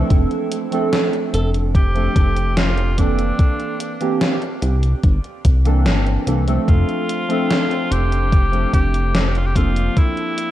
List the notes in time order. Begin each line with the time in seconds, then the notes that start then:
Already playing: F3 A3 C4 D4 A4
0.10 F1, kick, closed hi-hat
0.31 closed hi-hat
0.52 closed hi-hat
0.71 F3 A3 C4 D4 A4, closed hi-hat
0.93 snare, closed hi-hat
1.13 closed hi-hat
1.34 F1 A4, closed hi-hat
1.54 closed hi-hat
1.75 G4, kick, closed hi-hat
1.94 F3 A3 C4 D4 A4, closed hi-hat
2.16 F1, kick, closed hi-hat
2.37 closed hi-hat
2.57 F4, snare, closed hi-hat
2.78 closed hi-hat
2.97 E3 A#3 C4 D4 A4, kick, closed hi-hat
3.19 closed hi-hat
3.39 kick, closed hi-hat
3.60 closed hi-hat
3.80 closed hi-hat
4.00 E3 A#3 C4 D4 G4, closed hi-hat
4.21 snare, closed hi-hat
4.42 closed hi-hat
4.62 C2, closed hi-hat
4.83 closed hi-hat
5.03 G1, kick, closed hi-hat
5.24 closed hi-hat
5.45 C2, kick, closed hi-hat
5.65 E3 A#3 C4 D4 A4, closed hi-hat
5.86 G1, snare, closed hi-hat
6.06 closed hi-hat
6.26 C2 E3 A#3 C4 D4 A4, closed hi-hat
6.47 F3 A3 C4 D4 A4, closed hi-hat
6.68 F1 F4, kick, closed hi-hat
6.89 closed hi-hat
7.09 closed hi-hat
7.28 F3 A3 C4 D4 A4, closed hi-hat
7.50 snare, closed hi-hat
7.71 closed hi-hat
7.91 F1 G4, closed hi-hat
8.12 closed hi-hat
8.32 kick, closed hi-hat
8.52 F3 A3 C4 D4 A4, closed hi-hat
8.73 F1 G4, kick, closed hi-hat
8.94 closed hi-hat
9.15 snare, closed hi-hat
9.19 A4
9.28 G4
9.35 F4, closed hi-hat
9.47 G4
9.54 F3 A#3 C4 D4 F4 A4, kick, closed hi-hat
9.76 closed hi-hat
9.97 E4, kick, closed hi-hat
10.17 closed hi-hat
10.38 closed hi-hat